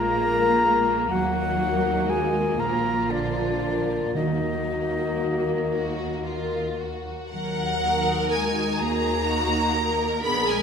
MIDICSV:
0, 0, Header, 1, 11, 480
1, 0, Start_track
1, 0, Key_signature, -6, "minor"
1, 0, Tempo, 956938
1, 553, Time_signature, 6, 3, 24, 8
1, 553, Tempo, 1001669
1, 1513, Tempo, 1054482
1, 3433, Tempo, 977199
1, 5055, End_track
2, 0, Start_track
2, 0, Title_t, "Flute"
2, 0, Program_c, 0, 73
2, 0, Note_on_c, 0, 82, 103
2, 533, Note_off_c, 0, 82, 0
2, 550, Note_on_c, 0, 78, 101
2, 1030, Note_on_c, 0, 80, 87
2, 1038, Note_off_c, 0, 78, 0
2, 1269, Note_on_c, 0, 82, 85
2, 1276, Note_off_c, 0, 80, 0
2, 1514, Note_on_c, 0, 74, 81
2, 1521, Note_off_c, 0, 82, 0
2, 1986, Note_off_c, 0, 74, 0
2, 1989, Note_on_c, 0, 75, 77
2, 3177, Note_off_c, 0, 75, 0
2, 5055, End_track
3, 0, Start_track
3, 0, Title_t, "Clarinet"
3, 0, Program_c, 1, 71
3, 0, Note_on_c, 1, 70, 82
3, 532, Note_off_c, 1, 70, 0
3, 551, Note_on_c, 1, 66, 79
3, 1025, Note_on_c, 1, 68, 71
3, 1033, Note_off_c, 1, 66, 0
3, 1267, Note_on_c, 1, 70, 81
3, 1274, Note_off_c, 1, 68, 0
3, 1509, Note_on_c, 1, 62, 68
3, 1516, Note_off_c, 1, 70, 0
3, 1985, Note_off_c, 1, 62, 0
3, 1988, Note_on_c, 1, 63, 60
3, 3176, Note_off_c, 1, 63, 0
3, 5055, End_track
4, 0, Start_track
4, 0, Title_t, "Violin section"
4, 0, Program_c, 2, 48
4, 0, Note_on_c, 2, 58, 59
4, 1976, Note_off_c, 2, 58, 0
4, 1994, Note_on_c, 2, 58, 55
4, 3321, Note_off_c, 2, 58, 0
4, 3431, Note_on_c, 2, 70, 69
4, 4137, Note_off_c, 2, 70, 0
4, 4157, Note_on_c, 2, 68, 61
4, 4387, Note_off_c, 2, 68, 0
4, 4387, Note_on_c, 2, 66, 62
4, 4628, Note_off_c, 2, 66, 0
4, 4633, Note_on_c, 2, 70, 68
4, 5055, Note_off_c, 2, 70, 0
4, 5055, End_track
5, 0, Start_track
5, 0, Title_t, "Violin section"
5, 0, Program_c, 3, 48
5, 0, Note_on_c, 3, 65, 48
5, 534, Note_off_c, 3, 65, 0
5, 556, Note_on_c, 3, 63, 69
5, 1250, Note_off_c, 3, 63, 0
5, 1268, Note_on_c, 3, 65, 69
5, 1973, Note_off_c, 3, 65, 0
5, 1987, Note_on_c, 3, 63, 58
5, 2645, Note_off_c, 3, 63, 0
5, 2710, Note_on_c, 3, 66, 64
5, 2935, Note_off_c, 3, 66, 0
5, 2951, Note_on_c, 3, 65, 65
5, 3196, Note_off_c, 3, 65, 0
5, 3196, Note_on_c, 3, 66, 59
5, 3433, Note_off_c, 3, 66, 0
5, 3434, Note_on_c, 3, 78, 93
5, 3904, Note_off_c, 3, 78, 0
5, 3922, Note_on_c, 3, 80, 76
5, 4155, Note_on_c, 3, 82, 94
5, 4158, Note_off_c, 3, 80, 0
5, 4871, Note_off_c, 3, 82, 0
5, 4871, Note_on_c, 3, 83, 90
5, 4989, Note_off_c, 3, 83, 0
5, 4991, Note_on_c, 3, 80, 78
5, 5055, Note_off_c, 3, 80, 0
5, 5055, End_track
6, 0, Start_track
6, 0, Title_t, "Harp"
6, 0, Program_c, 4, 46
6, 0, Note_on_c, 4, 46, 65
6, 0, Note_on_c, 4, 58, 53
6, 0, Note_on_c, 4, 65, 45
6, 0, Note_on_c, 4, 68, 51
6, 0, Note_on_c, 4, 77, 57
6, 72, Note_on_c, 4, 70, 56
6, 306, Note_off_c, 4, 65, 0
6, 312, Note_on_c, 4, 65, 57
6, 556, Note_on_c, 4, 51, 70
6, 572, Note_off_c, 4, 65, 0
6, 572, Note_off_c, 4, 68, 0
6, 572, Note_off_c, 4, 77, 0
6, 573, Note_off_c, 4, 46, 0
6, 784, Note_off_c, 4, 58, 0
6, 790, Note_on_c, 4, 58, 58
6, 1025, Note_off_c, 4, 70, 0
6, 1030, Note_on_c, 4, 70, 49
6, 1266, Note_on_c, 4, 46, 63
6, 1288, Note_off_c, 4, 51, 0
6, 1507, Note_off_c, 4, 58, 0
6, 1513, Note_on_c, 4, 58, 51
6, 1744, Note_off_c, 4, 70, 0
6, 1747, Note_on_c, 4, 65, 49
6, 1751, Note_on_c, 4, 70, 50
6, 1993, Note_on_c, 4, 51, 62
6, 2010, Note_off_c, 4, 46, 0
6, 2010, Note_off_c, 4, 65, 0
6, 2233, Note_off_c, 4, 58, 0
6, 2238, Note_on_c, 4, 58, 48
6, 2470, Note_off_c, 4, 70, 0
6, 2475, Note_on_c, 4, 70, 48
6, 2713, Note_on_c, 4, 78, 54
6, 2949, Note_off_c, 4, 70, 0
6, 2954, Note_on_c, 4, 70, 48
6, 3204, Note_on_c, 4, 66, 46
6, 3432, Note_off_c, 4, 51, 0
6, 3438, Note_on_c, 4, 51, 67
6, 3679, Note_off_c, 4, 58, 0
6, 3685, Note_on_c, 4, 58, 56
6, 3921, Note_off_c, 4, 66, 0
6, 3927, Note_on_c, 4, 66, 47
6, 4154, Note_off_c, 4, 70, 0
6, 4160, Note_on_c, 4, 70, 52
6, 4387, Note_off_c, 4, 78, 0
6, 4393, Note_on_c, 4, 78, 47
6, 4624, Note_off_c, 4, 70, 0
6, 4630, Note_on_c, 4, 70, 50
6, 4874, Note_on_c, 4, 46, 63
6, 4893, Note_off_c, 4, 78, 0
6, 4894, Note_off_c, 4, 66, 0
6, 4895, Note_off_c, 4, 51, 0
6, 5055, Note_off_c, 4, 46, 0
6, 5055, Note_off_c, 4, 58, 0
6, 5055, Note_off_c, 4, 70, 0
6, 5055, End_track
7, 0, Start_track
7, 0, Title_t, "Viola section"
7, 0, Program_c, 5, 48
7, 0, Note_on_c, 5, 56, 52
7, 533, Note_off_c, 5, 56, 0
7, 548, Note_on_c, 5, 54, 75
7, 1246, Note_off_c, 5, 54, 0
7, 1262, Note_on_c, 5, 53, 64
7, 1970, Note_off_c, 5, 53, 0
7, 1991, Note_on_c, 5, 54, 59
7, 3320, Note_off_c, 5, 54, 0
7, 3678, Note_on_c, 5, 63, 66
7, 3679, Note_on_c, 5, 66, 61
7, 4377, Note_off_c, 5, 63, 0
7, 4378, Note_off_c, 5, 66, 0
7, 4386, Note_on_c, 5, 66, 53
7, 4387, Note_on_c, 5, 63, 58
7, 4860, Note_off_c, 5, 63, 0
7, 4860, Note_off_c, 5, 66, 0
7, 4868, Note_on_c, 5, 68, 51
7, 4869, Note_on_c, 5, 62, 47
7, 5055, Note_off_c, 5, 62, 0
7, 5055, Note_off_c, 5, 68, 0
7, 5055, End_track
8, 0, Start_track
8, 0, Title_t, "French horn section"
8, 0, Program_c, 6, 60
8, 0, Note_on_c, 6, 56, 61
8, 0, Note_on_c, 6, 65, 60
8, 464, Note_off_c, 6, 56, 0
8, 464, Note_off_c, 6, 65, 0
8, 549, Note_on_c, 6, 58, 75
8, 549, Note_on_c, 6, 66, 77
8, 1247, Note_off_c, 6, 58, 0
8, 1247, Note_off_c, 6, 66, 0
8, 1257, Note_on_c, 6, 65, 56
8, 1259, Note_on_c, 6, 58, 57
8, 1973, Note_off_c, 6, 58, 0
8, 1985, Note_on_c, 6, 66, 70
8, 1986, Note_off_c, 6, 65, 0
8, 1986, Note_on_c, 6, 58, 75
8, 3258, Note_off_c, 6, 58, 0
8, 3276, Note_off_c, 6, 66, 0
8, 5055, End_track
9, 0, Start_track
9, 0, Title_t, "Cello section"
9, 0, Program_c, 7, 48
9, 0, Note_on_c, 7, 58, 78
9, 547, Note_on_c, 7, 54, 75
9, 551, Note_off_c, 7, 58, 0
9, 1015, Note_off_c, 7, 54, 0
9, 1022, Note_on_c, 7, 56, 75
9, 1263, Note_on_c, 7, 58, 72
9, 1265, Note_off_c, 7, 56, 0
9, 1510, Note_off_c, 7, 58, 0
9, 1510, Note_on_c, 7, 50, 68
9, 1988, Note_on_c, 7, 51, 65
9, 1990, Note_off_c, 7, 50, 0
9, 3176, Note_off_c, 7, 51, 0
9, 3432, Note_on_c, 7, 54, 63
9, 3903, Note_off_c, 7, 54, 0
9, 3923, Note_on_c, 7, 56, 69
9, 4157, Note_on_c, 7, 58, 74
9, 4158, Note_off_c, 7, 56, 0
9, 4870, Note_on_c, 7, 59, 67
9, 4872, Note_off_c, 7, 58, 0
9, 4989, Note_off_c, 7, 59, 0
9, 4994, Note_on_c, 7, 56, 68
9, 5055, Note_off_c, 7, 56, 0
9, 5055, End_track
10, 0, Start_track
10, 0, Title_t, "Timpani"
10, 0, Program_c, 8, 47
10, 1988, Note_on_c, 8, 51, 68
10, 2693, Note_off_c, 8, 51, 0
10, 5055, End_track
11, 0, Start_track
11, 0, Title_t, "Double bass section"
11, 0, Program_c, 10, 48
11, 0, Note_on_c, 10, 34, 59
11, 534, Note_off_c, 10, 34, 0
11, 554, Note_on_c, 10, 39, 71
11, 1254, Note_off_c, 10, 39, 0
11, 1269, Note_on_c, 10, 34, 68
11, 1990, Note_on_c, 10, 39, 56
11, 1992, Note_off_c, 10, 34, 0
11, 3319, Note_off_c, 10, 39, 0
11, 3434, Note_on_c, 10, 39, 68
11, 4075, Note_off_c, 10, 39, 0
11, 4158, Note_on_c, 10, 39, 76
11, 4787, Note_off_c, 10, 39, 0
11, 4873, Note_on_c, 10, 34, 66
11, 5055, Note_off_c, 10, 34, 0
11, 5055, End_track
0, 0, End_of_file